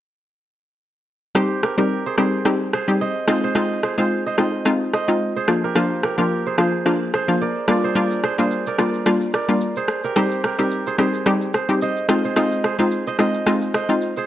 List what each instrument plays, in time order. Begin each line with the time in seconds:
1.35 synth pluck G3 C4 D#4 G4, kora G4 C5, cross-stick
1.63 kora G4 A#4, cross-stick
1.78 synth pluck G3 C4 D#4 G4, kora G4 A#4
2.06 kora G#4 C5
2.18 synth pluck G3 C4 D#4 G4, kora G#4 C5, cross-stick
2.45 synth pluck G3 C4 D#4 G4, cross-stick
2.73 kora G#4 C5, cross-stick
2.88 synth pluck G3 C4 D#4 G4
3.01 kora C5 D#5
3.28 synth pluck G#3 C4 D#4 F4, kora C5 D#5, cross-stick
3.44 kora G#4 C5
3.55 synth pluck G#3 C4 D#4 F4, kora C5 D#5, cross-stick
3.83 kora G#4 C5, cross-stick
3.98 synth pluck G#3 C4 D#4 F4, kora G#4 C5
4.26 kora C5 D#5
4.38 synth pluck G#3 C4 D#4 F4, kora C5 D#5, cross-stick
4.65 synth pluck G#3 C4 D#4 F4, cross-stick
4.93 kora C5 D#5, cross-stick
5.08 synth pluck G#3 C4 D#4 F4
5.36 kora G#4 C5
5.48 synth pluck F3 A#3 D4 F4, cross-stick
5.64 kora G4 A#4
5.75 synth pluck F3 A#3 D4 F4, kora F4 C5, cross-stick
6.03 kora G4 A#4, cross-stick
6.18 synth pluck F3 A#3 D4 F4, kora G4 A#4
6.47 kora G#4 C5
6.58 synth pluck F3 A#3 D4 F4, kora G#4 C5, cross-stick
6.85 synth pluck F3 A#3 D4 F4, cross-stick
7.14 kora G#4 C5, cross-stick
7.28 synth pluck F3 A#3 D4 F4
7.42 kora A#4 D5
7.68 synth pluck G3 A#3 D4 F4, kora A#4 D5, cross-stick
7.84 kora G#4 C5
7.96 synth pluck G3 A#3 D4 F4, kora A#4 D5, shaker
8.11 shaker
8.24 kora G#4 C5, cross-stick
8.38 synth pluck G3 A#3 D4 F4, kora G#4 C5, shaker
8.51 shaker
8.66 kora A#4 D5, shaker
8.78 synth pluck G3 A#3 D4 F4, kora A#4 D5, cross-stick, shaker
8.94 shaker
9.06 synth pluck G3 A#3 D4 F4, cross-stick, shaker
9.21 shaker
9.33 kora A#4 D5, cross-stick, shaker
9.48 synth pluck G3 A#3 D4 F4, shaker
9.61 shaker
9.76 kora G#4 C5, shaker
9.88 cross-stick, shaker
10.04 kora G4 A#4, shaker
10.16 synth pluck G3 C4 D#4 G4, kora G4 C5, cross-stick, shaker
10.31 shaker
10.44 kora G4 A#4, cross-stick, shaker
10.58 synth pluck G3 C4 D#4 G4, kora G4 A#4, shaker
10.71 shaker
10.87 kora G#4 C5, shaker
10.98 synth pluck G3 C4 D#4 G4, kora G#4 C5, cross-stick, shaker
11.14 shaker
11.26 synth pluck G3 C4 D#4 G4, cross-stick, shaker
11.41 shaker
11.54 kora G#4 C5, cross-stick, shaker
11.69 synth pluck G3 C4 D#4 G4, shaker
11.81 kora C5 D#5, shaker
11.96 shaker
12.09 synth pluck G#3 C4 D#4 F4, kora C5 D#5, cross-stick, shaker
12.24 kora G#4 C5, shaker
12.36 synth pluck G#3 C4 D#4 F4, kora C5 D#5, cross-stick, shaker
12.52 shaker
12.64 kora G#4 C5, cross-stick, shaker
12.79 synth pluck G#3 C4 D#4 F4, kora G#4 C5, shaker
12.91 shaker
13.07 kora C5 D#5, shaker
13.19 synth pluck G#3 C4 D#4 F4, kora C5 D#5, cross-stick, shaker
13.34 shaker
13.46 synth pluck G#3 C4 D#4 F4, cross-stick, shaker
13.61 shaker
13.74 kora C5 D#5, cross-stick, shaker
13.89 synth pluck G#3 C4 D#4 F4, shaker
14.01 shaker
14.16 kora G#4 C5, shaker